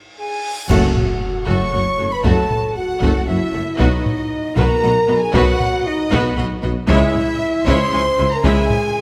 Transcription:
Already playing: reverse cymbal
0.18 G#4 G#5
0.69 F#1 F#2 F#3 A3 F#4 A4 F#5, concert bass drum, taiko, crash, impact
0.96 taiko low-mid
1.46 F#1 F#2 A3 F#4 A4 C#5 C#6, taiko
1.72 F#1 F#2 A3 F#4 C#5 F#5
1.98 F#1 F#2 A3 F#4 A4 C#5
2.11 B4 B5
2.24 F#1 F#2 F#3 A3 F#4 A4 A5, taiko
2.51 taiko low-mid
2.75 F#4 F#5
3.01 F#1 F#2 A3 F#4 A4, taiko
3.27 F#1 F#2 A3 E4 F#4 C#5 E5 F#5
3.53 F#1 F#2 A3 F#4 A4 C#5
3.78 B1 B2 F#3 B3 D#4 F#4 B4 D#5, taiko
4.06 taiko low-mid
4.56 B1 B2 B3 F#4 A#4 B4 A#5, taiko
4.81 B1 B2 B3 F#4 D#5 F#5
5.08 B1 B2 B3 F#4 B4 D#5
5.20 G#4 G#5
5.34 B1 B2 F#3 B3 F#4 B4 F#5, taiko
5.60 taiko low-mid
5.86 D#4 D#5
6.11 B1 B2 B3 F#4 B4, taiko
6.37 B1 B2 B3 F#4 D#5 F#5
6.62 B1 B2 B3 F#4 B4 D#5
6.88 C#2 C#3 E3 G#3 E4 C#5 E5, taiko
7.15 taiko low-mid
7.66 C#2 C#3 G#3 E4 C5 C#5 E5 C6, taiko
7.92 C#2 C#3 G#3 E4 G#5 C#6
8.18 C#2 C#3 G#3 E4 E5 G#5
8.32 A#4 A#5
8.44 C#2 C#3 E3 G#3 E4 G#4 C#5 E5 G#5, taiko
8.70 taiko low-mid

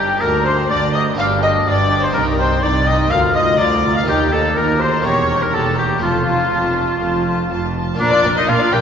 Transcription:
Already playing: G1 G2 A#3 D4 G4 A#5
0.18 A#3 D4 F4 A#4 A#5
0.22 D2 D4
0.45 D4 C5 A#5
0.69 D2 D4 D5 A#5
0.93 D4 D#5 A#5
1.14 B3 D4 G4
1.18 G1 G2 D4 F5 G5
1.41 D4 D#5 G5
1.65 G1 G2 D4 D5 G5
1.90 D4 G5
2.02 C5
2.11 C2 C4 D#4 G4 A#4 G5
2.15 C2
2.38 D#4 C5 G5
2.62 C2 D#4 D5 G5
2.86 D#4 D#5 G5
3.07 A#3 F4 A#4 F5 A#5
3.11 D2 F4
3.34 F4 D#5 A#5
3.58 D2 F4 D5 A#5
3.83 F4 A#5
3.95 F5
4.03 A#3 D#4 G4 A#5
4.08 D#2 D#4 G4
4.31 D#4 A4 A#5
4.56 D#2 D#4 A#4 A#5
4.79 D#4 C5 A#5
5.00 A#3 C#4 G4 C#5
5.04 E1 E2 G4 C#5 A#5
5.27 G4 A#5
5.41 A#4
5.51 E1 E2 G4 A4 A#5
5.75 G4 A#5
5.98 A3 C4 F4 A5
6.02 F1 F2 F4
6.27 F4 A5
6.51 F1 F2 F4 A5
6.76 F4 A5
7.01 F1 F2 F4 A5
7.25 F4 A5
7.50 F1 F2 F4 A5
7.74 F4 A5
7.94 A#3 D4 F4
7.99 A#1 A#2 D4 A#4 D5
8.11 F4 D5
8.24 A#1 A#2 D4 A#4
8.35 D#4 F4 D5 D#5
8.47 A#1 A#2 D4 F4 A#4 F5
8.59 F4 D5
8.71 A#1 A#2 D4 G4 A#4 G5

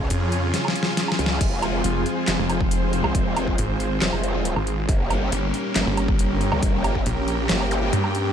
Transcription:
Already playing: C#3 C#4 F4 G#4 C#5 G#5
0.10 F2, closed hi-hat
0.32 closed hi-hat
0.54 snare, closed hi-hat
0.65 snare, low woodblock
0.76 closed hi-hat
0.83 snare
0.97 snare, closed hi-hat
1.08 snare, low woodblock
1.19 C#2, closed hi-hat
1.26 snare
1.41 F1 G#3 C4, kick, closed hi-hat, crash
1.62 F3 C4 F4 C5, closed hi-hat, low woodblock
1.84 F1, closed hi-hat
2.06 closed hi-hat
2.28 F1, snare, clap, closed hi-hat
2.39 F1
2.49 closed hi-hat, low woodblock
2.60 kick
2.71 closed hi-hat
2.93 closed hi-hat
3.04 C2, low woodblock
3.15 F1, kick, closed hi-hat
3.36 F3 C4 F4, closed hi-hat, low woodblock
3.47 kick
3.58 G#1, closed hi-hat
3.80 closed hi-hat
4.02 F1, snare, clap, closed hi-hat
4.13 F1, low woodblock
4.24 closed hi-hat
4.34 F3 C4 F4
4.45 closed hi-hat
4.56 G#1, low woodblock
4.67 closed hi-hat
4.89 G1 A#3 C#4 G4, kick, closed hi-hat
5.10 G3 C#4 G4, closed hi-hat, low woodblock
5.25 A#4
5.32 G1, closed hi-hat
5.37 G4
5.54 closed hi-hat
5.76 G1, snare, clap, closed hi-hat
5.87 G1
5.97 closed hi-hat, low woodblock
6.02 G5
6.08 kick
6.19 closed hi-hat
6.41 closed hi-hat
6.52 C#2, low woodblock
6.63 G1, kick, closed hi-hat
6.84 G3 C#4 G4, closed hi-hat, low woodblock
6.95 kick
7.06 A#1, closed hi-hat
7.28 closed hi-hat
7.49 G1, snare, clap, closed hi-hat
7.60 low woodblock
7.71 closed hi-hat, zap
7.82 G3 C#4 G4
7.93 G2, closed hi-hat
8.04 low woodblock
8.15 closed hi-hat

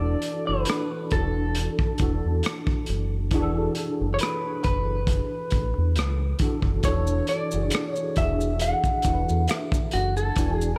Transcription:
Already playing: E1 E3 D4 F#4 A4 B4 D5
0.22 closed hi-hat
0.47 F#1 E3 D4 F#4 A4 B4
0.65 closed hi-hat
0.70 cross-stick
1.11 E1 E3 D4 F#4 A4, kick, closed hi-hat
1.15 A4
1.55 closed hi-hat
1.79 kick
1.98 E1 E3 D4 F#4, kick, closed hi-hat
2.03 A4
2.25 E2
2.43 cross-stick, closed hi-hat
2.67 kick
2.86 F#1, closed hi-hat
3.31 E1 E3 D4 F#4, kick, closed hi-hat
3.35 G#4
3.42 A4
3.75 closed hi-hat
4.01 F#1
4.14 C#5
4.19 B4, closed hi-hat
4.23 cross-stick
4.64 F#1 B4, kick, closed hi-hat
5.07 kick, closed hi-hat
5.50 A1, kick, closed hi-hat
5.78 E2
5.96 C#2, cross-stick, closed hi-hat
6.39 E3 D4 F#4, kick, closed hi-hat
6.43 A4
6.62 F#1, kick
6.83 E1 E3 D4 F#4 C#5, kick, closed hi-hat, maracas
6.87 A4
7.07 maracas
7.27 D5, closed hi-hat
7.51 F#1 E3 D4 F#4 G#4, maracas
7.70 finger snap, closed hi-hat, maracas
7.75 cross-stick
7.90 C#5
7.96 maracas
8.16 E1 E3 D4 F#4 G#4 E5, kick, closed hi-hat, maracas
8.41 maracas
8.59 F#5, closed hi-hat, maracas
8.84 kick, maracas
9.02 E1 E3 D4 F#4, kick, closed hi-hat, maracas
9.07 A4
9.14 B4
9.29 E2, maracas
9.48 finger snap, cross-stick, closed hi-hat, maracas
9.54 E5
9.72 kick, maracas
9.91 F#1 F#4, closed hi-hat
10.17 A4, maracas
10.36 E1 E3 D4 F#4, kick, closed hi-hat, maracas
10.40 G#5
10.55 G#4
10.61 maracas

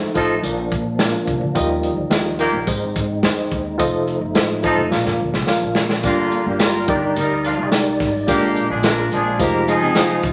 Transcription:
Already playing: F3 A3 D#4
0.02 muted upright bass stroke
0.14 A1 F3 D#4 F4 A4 C5 D#5, kick, closed hi-hat
0.42 A#1 A#2 A#3 D4 F4 A#4 D5, closed hi-hat, tambourine
0.72 A#2, kick, closed hi-hat
0.99 D4 F4 A#4 D5, snare, closed hi-hat, tambourine
1.27 C2, kick, closed hi-hat
1.41 D2
1.55 D#2 D#3 F3 G3 D#4 F4 G4 A#4 D#5, kick, closed hi-hat, tambourine
1.83 closed hi-hat
1.96 D2
2.10 D#2 F4 G4 A#4 D#5, snare, closed hi-hat, tambourine
2.38 D#3 A#3 F4 G4 A#4 D#5, closed hi-hat
2.53 A#1
2.66 G#1 G#2 G#3 C4 D#4 G#4 C5 D#5, kick, closed hi-hat, tambourine
2.96 G#2, kick, closed hi-hat
3.23 F2 D#4 G#4 C5 D#5, snare, closed hi-hat, tambourine
3.51 D#2, kick, closed hi-hat
3.78 F1 F3 A3 F4 A4 C5 D#5, kick, closed hi-hat, tambourine
4.07 closed hi-hat
4.21 G1
4.34 A1 F4 A4 C5 D#5, snare, closed hi-hat, tambourine
4.62 F3 D#4 F4 A4 C5 D#5, kick, closed hi-hat
4.77 F1
4.90 A#1 A#2 F3 A#3 D4 F4 A#4 D5 F5, snare, tambourine
5.05 F2, snare
5.19 D2
5.33 C2, snare
5.47 F4 A#4 D5 F5, muted upright bass stroke, snare, tambourine
5.61 A#1
5.75 A#2, snare
5.89 snare
6.03 G1 G2 D3 G3 A#3 F4 G4 A#4 D5, kick, closed hi-hat, tambourine
6.32 closed hi-hat
6.46 G1 D3 A#3 G4
6.59 G3 F4 G4 A#4 D5, snare, closed hi-hat, tambourine
6.88 G1 G2 D#3 D4 D#4 G4 A#4 D5, kick, closed hi-hat
7.16 D2 G3 D#4 A#4, closed hi-hat, tambourine
7.44 F3 D4 F4, closed hi-hat
7.59 C2
7.71 D#4 G4 A#4 D5, snare, closed hi-hat, tambourine
8.00 G#1, kick, snare, open hi-hat
8.27 A#1 A#2 D3 G#3 A#3 D4 F4 G4 A#4 D5, kick, closed hi-hat, tambourine
8.56 closed hi-hat
8.69 A#1 F3 D4 G#4
8.83 F3 D4 F4 G#4 A#4 D5, snare, closed hi-hat, tambourine
9.11 A#1 F3 D4 G#4, closed hi-hat
9.39 F1 F3 A#3 D#4 F4 G4 G#4 A#4 C5 D#5, kick, closed hi-hat, tambourine
9.68 F3 G#3 D#4 F4 G#4, closed hi-hat
9.82 F1 C4 G#4
9.95 A#3 F4 G4 G#4 C5 D#5, snare, closed hi-hat, tambourine
10.10 G#3 F4
10.23 F1, kick, closed hi-hat

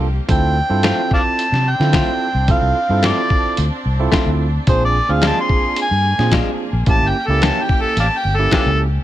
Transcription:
Already playing: C2 F3 A#3 G4
0.28 D2 C4 D4 E4 F4 A4 G5, kick, closed hi-hat
0.69 G2 C4 E4 F4 A4
0.83 A3 C4 F4, snare, closed hi-hat
1.11 D5 F5 A5, kick
1.39 closed hi-hat
1.52 C3, snare
1.70 G5
1.80 D3 C4 E4 F4 A4, snare
1.93 A3 C4 F4, kick, snare, closed hi-hat
2.34 C2
2.48 C4 E4 F4 A4 F5, kick, closed hi-hat
2.61 C2
2.89 G2 C4 E4 F4 A4
3.03 A3 C4 F4 D5, snare, closed hi-hat
3.30 kick
3.57 D2, closed hi-hat
3.85 C2
3.99 C4 E4 F4 A4
4.12 A3 C4 F4, kick, snare, closed hi-hat
4.26 D2
4.67 A#1 A#3 C4 D4 F4 G#4 C5, kick, closed hi-hat
4.85 D5
5.09 D2 C4 D4 F4 G#4 F5
5.22 F3 G#3 D4 F4, snare, closed hi-hat
5.27 A5
5.41 C6
5.49 kick
5.76 closed hi-hat
5.82 G#5
5.91 G2
6.18 A#2 C4 D4 F4 G#4, snare
6.32 F3 G#3 D4 F4, kick, snare, closed hi-hat
6.73 A#1
6.86 A1 A#3 C#4 E4 G4 A5, kick, closed hi-hat
7.01 G1
7.09 G5
7.27 C#2 A#3 C#4 E4 G4 A4
7.42 E3 A#3 C#4 G4 A5, snare, closed hi-hat
7.63 G5
7.69 kick
7.81 A4
7.97 A1 D5 F5 A5, closed hi-hat
8.17 G5
8.25 G1
8.36 A#3 C#4 E4 G4 A4
8.51 E3 A#3 C#4 D4 F4 G4 A4, kick, snare, closed hi-hat
8.66 C#2

